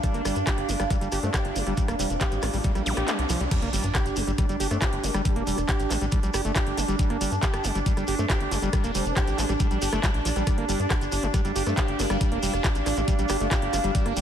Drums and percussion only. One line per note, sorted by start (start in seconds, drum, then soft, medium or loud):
0.03 kick loud
0.03 cross-stick soft
0.03 closed hi-hat loud
0.03 shekere soft
0.14 closed hi-hat medium
0.14 shekere soft
0.25 cross-stick medium
0.25 open hi-hat loud
0.25 shekere medium
0.36 closed hi-hat medium
0.36 shekere soft
0.47 kick loud
0.47 clap loud
0.47 closed hi-hat loud
0.47 shekere medium
0.58 cross-stick soft
0.58 closed hi-hat medium
0.69 open hi-hat loud
0.69 shekere medium
0.79 cross-stick medium
0.79 closed hi-hat medium
0.79 shekere soft
0.90 kick loud
0.90 closed hi-hat loud
0.90 shekere medium
1.01 closed hi-hat medium
1.01 shekere soft
1.12 cross-stick soft
1.12 open hi-hat loud
1.12 shekere medium
1.23 closed hi-hat medium
1.23 shekere soft
1.34 kick loud
1.34 cross-stick medium
1.34 clap loud
1.34 closed hi-hat medium
1.34 shekere medium
1.45 closed hi-hat medium
1.56 open hi-hat loud
1.56 shekere medium
1.66 cross-stick soft
1.66 closed hi-hat medium
1.66 shekere soft
1.77 kick loud
1.77 closed hi-hat loud
1.77 shekere soft
1.88 cross-stick medium
1.88 closed hi-hat medium
1.88 shekere soft
1.99 open hi-hat loud
1.99 shekere loud
2.10 closed hi-hat medium
2.10 shekere soft
2.21 kick loud
2.21 cross-stick soft
2.21 clap loud
2.21 closed hi-hat loud
2.21 shekere soft
2.32 closed hi-hat medium
2.32 shekere soft
2.42 cross-stick medium
2.42 clap soft
2.42 open hi-hat loud
2.42 shekere medium
2.53 open hi-hat medium
2.53 shekere soft
2.63 kick loud
2.63 closed hi-hat loud
2.63 shekere soft
2.75 cross-stick soft
2.75 closed hi-hat medium
2.75 shekere soft
2.86 open hi-hat loud
2.86 shekere medium
2.97 cross-stick medium
2.97 closed hi-hat medium
2.97 shekere soft
3.08 clap loud
3.08 closed hi-hat loud
3.08 shekere soft
3.19 closed hi-hat medium
3.29 cross-stick soft
3.29 open hi-hat loud
3.29 shekere medium
3.40 closed hi-hat medium
3.40 shekere soft
3.51 kick loud
3.51 cross-stick soft
3.51 closed hi-hat loud
3.51 crash loud
3.51 shekere soft
3.62 closed hi-hat medium
3.73 open hi-hat loud
3.73 shekere medium
3.83 closed hi-hat medium
3.83 shekere soft
3.95 kick loud
3.95 cross-stick medium
3.95 clap loud
3.95 closed hi-hat loud
3.95 shekere medium
4.06 closed hi-hat medium
4.06 shekere soft
4.16 open hi-hat loud
4.16 shekere medium
4.27 closed hi-hat medium
4.27 shekere soft
4.38 kick loud
4.38 cross-stick soft
4.38 closed hi-hat loud
4.38 shekere soft
4.49 closed hi-hat medium
4.49 shekere soft
4.60 open hi-hat loud
4.60 shekere medium
4.71 cross-stick soft
4.71 closed hi-hat medium
4.71 shekere soft
4.81 kick loud
4.81 clap loud
4.81 closed hi-hat loud
4.81 shekere medium
4.93 closed hi-hat medium
5.04 open hi-hat loud
5.04 shekere medium
5.14 cross-stick medium
5.14 closed hi-hat medium
5.14 shekere soft
5.25 kick loud
5.25 closed hi-hat loud
5.25 shekere medium
5.36 closed hi-hat medium
5.47 open hi-hat loud
5.47 shekere medium
5.58 cross-stick soft
5.58 closed hi-hat medium
5.58 shekere soft
5.68 kick loud
5.68 clap loud
5.68 closed hi-hat loud
5.68 shekere medium
5.80 closed hi-hat medium
5.80 shekere soft
5.90 cross-stick soft
5.90 clap soft
5.90 open hi-hat loud
5.90 shekere medium
6.01 closed hi-hat medium
6.01 shekere soft
6.11 kick loud
6.11 closed hi-hat loud
6.11 shekere medium
6.23 closed hi-hat medium
6.23 shekere soft
6.34 cross-stick medium
6.34 open hi-hat loud
6.34 shekere medium
6.45 closed hi-hat medium
6.45 shekere soft
6.55 kick loud
6.55 clap loud
6.55 closed hi-hat loud
6.55 shekere medium
6.67 closed hi-hat medium
6.77 cross-stick soft
6.77 open hi-hat loud
6.77 shekere loud
6.88 closed hi-hat medium
6.88 shekere soft
6.99 kick loud
6.99 closed hi-hat medium
6.99 shekere medium
7.10 cross-stick soft
7.10 closed hi-hat medium
7.21 open hi-hat loud
7.21 shekere loud
7.32 closed hi-hat medium
7.32 shekere soft
7.42 kick loud
7.42 clap loud
7.42 closed hi-hat medium
7.42 shekere medium
7.53 cross-stick medium
7.53 closed hi-hat medium
7.53 shekere soft
7.64 open hi-hat loud
7.64 shekere medium
7.75 closed hi-hat medium
7.75 shekere soft
7.86 kick loud
7.86 closed hi-hat medium
7.86 shekere medium
7.97 cross-stick soft
7.97 closed hi-hat medium
7.97 shekere soft
8.07 open hi-hat loud
8.07 shekere medium
8.19 closed hi-hat medium
8.19 shekere soft
8.30 kick loud
8.30 cross-stick soft
8.30 clap loud
8.30 closed hi-hat medium
8.30 shekere medium
8.41 closed hi-hat medium
8.51 open hi-hat loud
8.51 shekere loud
8.62 closed hi-hat medium
8.62 shekere soft
8.73 kick loud
8.73 cross-stick medium
8.73 closed hi-hat medium
8.73 shekere medium
8.84 closed hi-hat medium
8.84 shekere soft
8.95 open hi-hat loud
8.95 shekere loud
9.06 closed hi-hat medium
9.06 shekere soft
9.17 kick loud
9.17 cross-stick soft
9.17 clap loud
9.17 closed hi-hat medium
9.17 shekere medium
9.27 closed hi-hat medium
9.27 shekere soft
9.38 clap soft
9.38 open hi-hat loud
9.38 shekere medium
9.49 cross-stick soft
9.49 closed hi-hat medium
9.49 shekere soft
9.60 kick loud
9.60 closed hi-hat medium
9.60 shekere medium
9.71 closed hi-hat medium
9.71 shekere soft
9.82 open hi-hat loud
9.82 shekere loud
9.93 cross-stick medium
9.93 closed hi-hat medium
9.93 shekere soft
10.03 kick loud
10.03 clap loud
10.03 closed hi-hat medium
10.03 shekere medium
10.14 closed hi-hat soft
10.25 open hi-hat loud
10.25 shekere medium
10.36 cross-stick soft
10.36 closed hi-hat medium
10.36 shekere soft
10.47 kick loud
10.47 cross-stick soft
10.47 closed hi-hat medium
10.47 shekere soft
10.58 closed hi-hat medium
10.69 open hi-hat loud
10.69 shekere medium
10.79 closed hi-hat soft
10.79 shekere soft
10.90 kick loud
10.90 cross-stick medium
10.90 clap loud
10.90 closed hi-hat medium
10.90 shekere medium
11.01 closed hi-hat medium
11.01 shekere soft
11.12 open hi-hat loud
11.12 shekere loud
11.23 closed hi-hat medium
11.23 shekere soft
11.34 kick loud
11.34 cross-stick soft
11.34 closed hi-hat medium
11.34 shekere medium
11.45 closed hi-hat medium
11.45 shekere soft
11.56 open hi-hat loud
11.56 shekere loud
11.66 cross-stick soft
11.66 closed hi-hat medium
11.66 shekere soft
11.77 kick loud
11.77 clap loud
11.77 closed hi-hat medium
11.77 shekere medium
11.88 closed hi-hat medium
11.99 open hi-hat loud
11.99 shekere loud
12.10 cross-stick medium
12.10 closed hi-hat medium
12.10 shekere soft
12.21 kick loud
12.21 closed hi-hat medium
12.21 shekere soft
12.32 closed hi-hat medium
12.43 open hi-hat loud
12.43 shekere medium
12.54 cross-stick soft
12.54 closed hi-hat medium
12.54 shekere soft
12.64 kick loud
12.64 clap loud
12.64 closed hi-hat medium
12.64 shekere medium
12.75 closed hi-hat medium
12.75 shekere soft
12.86 cross-stick soft
12.86 clap soft
12.86 open hi-hat loud
12.86 shekere medium
12.97 closed hi-hat medium
12.97 shekere soft
13.08 kick loud
13.08 closed hi-hat medium
13.08 shekere medium
13.19 closed hi-hat medium
13.19 shekere soft
13.29 cross-stick medium
13.29 open hi-hat loud
13.29 shekere medium
13.40 closed hi-hat medium
13.40 shekere soft
13.51 kick loud
13.51 clap loud
13.51 closed hi-hat loud
13.51 shekere medium
13.62 closed hi-hat medium
13.73 cross-stick soft
13.73 open hi-hat loud
13.73 shekere medium
13.84 closed hi-hat medium
13.84 shekere soft
13.95 kick loud
13.95 closed hi-hat loud
13.95 shekere soft
14.06 cross-stick soft
14.06 closed hi-hat medium
14.17 open hi-hat loud
14.17 shekere medium